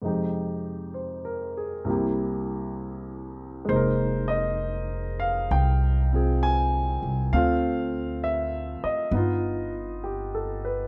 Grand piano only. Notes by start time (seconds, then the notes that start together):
0.02 F2 C3 G#3 D#4
0.06 G4
0.94 C5
1.25 A#4
1.57 G#4
1.85 C2 C3 A#3
1.89 E4 G4
3.65 G#3 A#3 C5
3.72 D#4
3.76 A#4
4.28 D#5
5.20 F5
5.51 G5
6.13 C4 F4 G#4
6.43 G#5
7.33 A3 C4 F4 F5
8.24 E5
8.84 D#5
9.12 B3 D#4
9.17 F4
10.04 G4
10.35 A4
10.65 B4